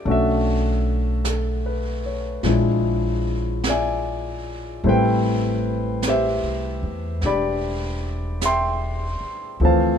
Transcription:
0.00 0.12 D5 medium
0.05 2.40 B1 medium
0.05 2.44 A3 soft
0.05 2.44 C#4 soft
0.05 2.44 D4 soft
0.05 2.45 F#4 medium
0.05 brush sweep soft
0.10 1.25 A4 soft
0.10 3.67 E5 medium
1.25 2.01 A4 soft
1.25 brush sweep soft
1.25 snare soft
1.25 hi-hat pedal soft
1.66 2.28 B4 soft
2.06 2.67 C#5 soft
2.43 4.79 A#1 medium
2.43 4.83 F3 soft
2.43 4.83 G#3 soft
2.43 4.84 D4 soft
2.43 brush sweep soft
2.43 snare soft
2.47 4.84 E4 soft
3.64 brush sweep soft
3.64 snare soft
3.64 hi-hat pedal soft
3.69 4.82 D5 soft
3.69 4.82 E5 soft
3.69 4.83 G#5 medium
4.83 6.39 A1 medium
4.83 9.60 G3 soft
4.83 9.60 A3 soft
4.83 9.61 C4 soft
4.83 9.61 E4 medium
4.83 6.06 C5 medium
4.83 brush sweep soft
4.88 7.20 B4 medium
4.88 6.09 G5 medium
6.02 brush sweep soft
6.02 snare soft
6.02 hi-hat pedal soft
6.08 7.24 G4 medium
6.08 8.40 C5 medium
6.08 7.21 E5 medium
6.42 6.79 C2 soft
6.83 7.19 E2 medium
7.21 9.16 E1 medium
7.21 brush sweep soft
7.21 snare soft
7.25 9.62 D4 soft
7.25 9.58 G4 medium
7.25 8.47 D5 medium
7.25 9.58 B5 medium
8.41 9.58 E5 medium
8.41 brush sweep soft
8.41 snare soft
8.41 hi-hat pedal soft
8.45 9.58 G5 soft
8.45 9.58 C6 medium
9.21 muted upright bass stroke soft
9.60 9.98 D2 medium
9.60 9.98 E3 soft
9.60 9.98 F3 soft
9.60 9.98 A3 soft
9.60 9.98 C4 soft
9.60 brush sweep soft
9.65 9.98 C5 medium
9.65 9.98 F5 medium
9.65 9.98 A5 medium

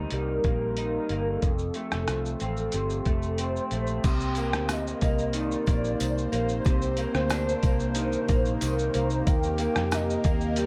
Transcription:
0.00 1.43 C3 medium
0.00 0.11 G3 medium
0.00 0.44 A#3 medium
0.00 0.77 D#4 medium
0.10 0.38 C2 medium
0.10 1.50 G3 medium
0.10 0.58 A#4 loud
0.10 closed hi-hat medium
0.44 0.97 A#1 medium
0.44 1.10 A#3 medium
0.44 kick medium
0.44 closed hi-hat soft
0.60 0.76 A#4 loud
0.77 1.50 D#4 medium
0.77 1.29 A#4 loud
0.77 closed hi-hat medium
1.09 1.36 G1 medium
1.09 1.50 A#3 medium
1.09 closed hi-hat soft
1.27 3.38 A4 loud
1.42 1.69 F1 loud
1.42 4.05 F2 medium
1.42 kick medium
1.42 closed hi-hat medium
1.42 shaker medium
1.58 shaker medium
1.74 3.05 A3 medium
1.74 closed hi-hat soft
1.74 shaker soft
1.91 2.05 F1 medium
1.91 cross-stick medium
1.91 shaker soft
2.08 2.34 C2 medium
2.08 4.11 F3 soft
2.08 cross-stick loud
2.08 closed hi-hat medium
2.08 shaker medium
2.25 shaker soft
2.40 2.67 A1 medium
2.40 3.40 C4 medium
2.40 closed hi-hat medium
2.40 shaker medium
2.57 shaker soft
2.72 3.00 G1 medium
2.72 4.03 C3 medium
2.72 closed hi-hat medium
2.72 shaker medium
2.90 shaker medium
3.05 3.59 F1 medium
3.05 3.71 A3 medium
3.05 kick medium
3.05 closed hi-hat soft
3.05 shaker soft
3.22 shaker soft
3.38 4.41 C4 medium
3.38 4.06 C5 medium
3.38 closed hi-hat medium
3.38 shaker medium
3.56 shaker soft
3.71 3.98 A#1 medium
3.71 4.11 A3 medium
3.71 closed hi-hat soft
3.71 shaker soft
3.87 shaker soft
4.04 4.53 C2 loud
4.04 10.66 C3 medium
4.04 6.64 C3 medium
4.04 10.66 A#3 medium
4.04 10.66 A#4 medium
4.04 9.23 C5 medium
4.04 4.72 G5 medium
4.04 kick medium
4.04 closed hi-hat medium
4.04 crash medium
4.04 tambourine medium
4.04 shaker medium
4.20 shaker medium
4.35 5.02 A#3 medium
4.35 closed hi-hat medium
4.35 tambourine soft
4.35 shaker medium
4.53 4.93 D2 medium
4.53 cross-stick medium
4.53 shaker soft
4.69 5.36 D#5 loud
4.69 cross-stick loud
4.69 closed hi-hat medium
4.69 tambourine medium
4.69 shaker medium
4.87 shaker medium
5.01 5.55 C2 medium
5.01 5.67 A#3 medium
5.01 kick medium
5.01 closed hi-hat medium
5.01 tambourine soft
5.01 shaker medium
5.18 shaker soft
5.33 7.34 D#3 medium
5.33 6.36 D5 loud
5.33 closed hi-hat medium
5.33 tambourine soft
5.33 shaker medium
5.51 shaker medium
5.66 5.94 A#1 medium
5.66 6.32 A#3 medium
5.66 kick medium
5.66 closed hi-hat medium
5.66 tambourine soft
5.66 shaker soft
5.84 shaker soft
6.00 6.27 C2 medium
6.00 closed hi-hat medium
6.00 tambourine medium
6.00 shaker medium
6.18 shaker soft
6.32 6.59 A#1 medium
6.32 6.98 A#3 medium
6.32 6.99 C5 loud
6.32 closed hi-hat medium
6.32 tambourine soft
6.32 shaker medium
6.49 shaker medium
6.65 7.05 C2 loud
6.65 9.27 C3 medium
6.65 kick loud
6.65 closed hi-hat medium
6.65 tambourine medium
6.65 shaker medium
6.82 shaker medium
6.97 7.63 A#3 medium
6.97 8.58 C5 loud
6.97 closed hi-hat medium
6.97 tambourine soft
6.97 shaker soft
7.14 7.54 D2 medium
7.14 cross-stick medium
7.14 shaker soft
7.30 10.66 D4 medium
7.30 cross-stick loud
7.30 closed hi-hat medium
7.30 tambourine medium
7.30 shaker medium
7.49 shaker medium
7.63 8.16 C2 loud
7.63 8.29 A#3 medium
7.63 kick medium
7.63 closed hi-hat medium
7.63 tambourine soft
7.63 shaker medium
7.80 shaker soft
7.95 8.61 D#3 medium
7.95 closed hi-hat medium
7.95 tambourine soft
7.95 shaker medium
8.12 shaker medium
8.28 8.55 A#1 loud
8.28 8.94 A#3 medium
8.28 kick medium
8.28 closed hi-hat soft
8.28 tambourine soft
8.28 shaker soft
8.45 shaker soft
8.61 8.88 C2 medium
8.61 10.57 D#3 medium
8.61 9.28 C5 loud
8.61 closed hi-hat medium
8.61 tambourine medium
8.61 shaker medium
8.79 shaker medium
8.94 9.21 C2 medium
8.94 9.59 A#3 medium
8.94 closed hi-hat medium
8.94 tambourine soft
8.94 shaker medium
9.10 shaker medium
9.27 9.66 D#2 loud
9.27 10.66 G4 medium
9.27 9.94 G5 loud
9.27 kick loud
9.27 closed hi-hat medium
9.27 tambourine medium
9.27 shaker medium
9.43 shaker medium
9.58 10.25 A#3 medium
9.58 closed hi-hat medium
9.58 tambourine soft
9.58 shaker medium
9.76 10.16 F2 medium
9.76 cross-stick medium
9.76 shaker soft
9.91 10.57 D#5 loud
9.91 cross-stick loud
9.91 closed hi-hat medium
9.91 tambourine medium
9.91 shaker medium
10.10 shaker medium
10.24 10.66 D#2 medium
10.24 10.66 A#3 medium
10.24 kick medium
10.24 closed hi-hat medium
10.24 tambourine soft
10.24 shaker medium
10.41 shaker soft
10.56 10.66 G3 medium
10.56 10.66 D5 loud
10.56 closed hi-hat medium
10.56 tambourine soft
10.56 shaker loud

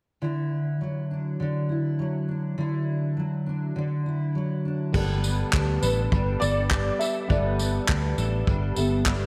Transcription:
0.22 1.39 D3 medium
0.22 1.68 E4 medium
0.81 1.98 F#3 soft
1.11 2.28 D4 soft
1.40 2.57 D3 medium
1.69 2.57 E4 soft
1.99 3.16 F#3 medium
2.28 3.46 D4 soft
2.58 3.75 D3 medium
2.58 4.05 E4 medium
3.17 4.34 F#3 medium
3.46 4.65 D4 soft
3.76 7.26 D3 medium
4.06 4.95 E4 medium
4.35 4.94 F#3 medium
4.65 5.83 D4 soft
4.92 5.43 G1 loud
4.92 6.12 G3 medium
4.92 5.00 A#3 medium
4.92 5.22 B3 medium
4.92 7.25 G4 medium
4.92 7.26 A4 medium
4.92 7.30 A4 medium
4.92 kick loud
4.92 crash medium
4.96 7.27 B3 medium
4.96 7.27 D5 medium
5.23 5.52 B3 medium
5.23 7.28 B3 medium
5.23 tambourine medium
5.53 5.77 D2 medium
5.53 6.40 B3 medium
5.53 6.12 D4 medium
5.53 kick loud
5.53 clap medium
5.82 6.07 A1 medium
5.82 8.17 D4 medium
5.82 6.41 A4 medium
5.82 6.43 B4 medium
5.82 tambourine medium
6.12 6.36 G1 medium
6.12 7.29 G3 medium
6.12 6.71 D4 medium
6.12 kick loud
6.40 6.90 G1 medium
6.40 6.70 B3 medium
6.40 7.00 A4 medium
6.40 7.01 D5 loud
6.40 tambourine medium
6.71 7.58 B3 medium
6.71 7.88 D4 medium
6.71 kick loud
6.71 clap loud
6.99 8.18 A4 medium
6.99 7.30 E5 medium
6.99 tambourine medium
7.28 7.78 G1 loud
7.28 8.47 G3 medium
7.28 8.73 B3 medium
7.28 7.58 B3 medium
7.28 8.73 G4 medium
7.28 9.26 A4 medium
7.28 8.74 A4 medium
7.28 9.26 D5 medium
7.28 kick medium
7.32 8.75 E5 medium
7.59 7.88 B3 medium
7.59 9.26 B3 medium
7.59 tambourine medium
7.88 8.13 D2 medium
7.88 8.75 B3 medium
7.88 8.47 D4 medium
7.88 kick loud
7.88 clap loud
8.18 8.42 A1 medium
8.18 9.26 D4 medium
8.18 8.76 A4 medium
8.18 tambourine medium
8.47 8.71 G1 medium
8.47 9.26 G3 medium
8.47 9.06 D4 medium
8.47 kick loud
8.76 9.25 G1 medium
8.76 9.26 B3 medium
8.76 9.05 B3 medium
8.76 9.26 G4 soft
8.76 9.26 A4 medium
8.76 9.26 A4 soft
8.76 9.26 E5 medium
8.76 tambourine medium
9.06 9.26 B3 medium
9.06 9.26 D4 medium
9.06 kick medium
9.06 clap loud

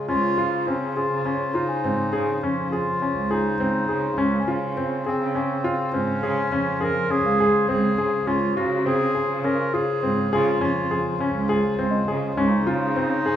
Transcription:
0.08 0.36 C#2 medium
0.08 13.36 C#3 medium
0.08 0.33 C#4 medium
0.08 0.69 F4 loud
0.08 13.36 F4 medium
0.08 13.36 C5 medium
0.38 1.08 C#3 medium
0.38 0.62 F4 medium
0.67 0.91 C4 medium
0.67 0.98 C#4 medium
0.67 1.40 A#5 soft
0.96 1.55 F4 medium
0.96 1.21 G#4 medium
1.12 1.38 C#3 medium
1.25 1.50 C#4 medium
1.54 2.42 D#4 medium
1.54 1.79 F4 medium
1.69 2.41 G#5 medium
1.84 1.98 G#2 medium
1.84 2.08 C4 medium
2.13 2.40 C#3 medium
2.13 2.37 G#4 medium
2.42 3.12 F2 medium
2.42 2.72 C#4 medium
2.42 2.67 C#4 medium
2.70 3.33 F4 medium
2.70 2.96 G#4 medium
3.02 3.26 C#4 medium
3.16 3.56 C#2 medium
3.31 4.19 D#4 medium
3.31 3.54 G#4 medium
3.59 3.86 C#2 medium
3.59 3.84 C4 medium
3.88 4.15 C#3 medium
3.88 4.13 G#4 medium
4.18 4.45 C#2 medium
4.18 4.42 C#4 medium
4.18 4.76 C#4 medium
4.40 5.12 G#5 soft
4.47 5.17 C#3 medium
4.47 4.71 F4 medium
4.77 5.01 C4 medium
5.06 5.95 C4 medium
5.06 5.30 G#4 medium
5.20 5.47 C#3 medium
5.35 5.59 C#4 medium
5.64 5.88 F4 medium
5.93 6.07 G#2 medium
5.93 6.18 C4 medium
5.93 6.85 C#4 loud
6.21 6.49 C#3 medium
6.21 6.47 G#4 medium
6.52 7.21 F2 medium
6.52 6.76 C#4 medium
6.81 7.05 G#4 medium
6.81 7.12 A#4 loud
7.10 7.34 C#4 medium
7.10 7.69 G#4 loud
7.24 7.65 C#2 medium
7.24 7.99 F5 soft
7.40 7.64 G#4 medium
7.69 7.96 C#2 medium
7.69 7.93 C4 medium
7.69 8.29 G#4 medium
7.98 8.25 C#3 medium
7.98 8.22 G#4 medium
8.26 8.54 C#2 medium
8.26 8.51 C#4 medium
8.26 8.55 F4 loud
8.55 9.25 C#3 medium
8.55 8.81 F4 medium
8.55 8.84 F#4 medium
8.86 9.10 C4 medium
8.86 9.46 G#4 loud
9.15 9.39 G#4 medium
9.30 9.57 C#3 medium
9.44 9.68 C#4 medium
9.44 9.75 A#4 medium
9.74 9.98 F4 medium
9.74 10.33 G#4 loud
10.03 10.17 G#2 medium
10.03 10.27 C4 medium
10.32 10.59 C#3 medium
10.32 10.61 F4 medium
10.32 10.57 G#4 medium
10.61 11.31 F2 medium
10.61 10.85 C#4 medium
10.61 11.05 F4 medium
10.91 11.15 G#4 medium
11.20 11.44 C#4 medium
11.20 11.50 C#4 medium
11.34 11.75 C#2 medium
11.49 12.10 F4 medium
11.49 11.73 G#4 medium
11.78 12.05 C#2 medium
11.78 12.03 C4 medium
11.91 12.63 D#5 medium
12.07 12.34 C#3 medium
12.07 12.32 G#4 medium
12.37 12.64 C#2 medium
12.37 12.61 C#4 medium
12.37 13.36 D#4 loud
12.66 13.36 C#3 medium
12.66 12.91 F4 medium
12.96 13.20 C4 medium
13.26 13.36 G#4 medium

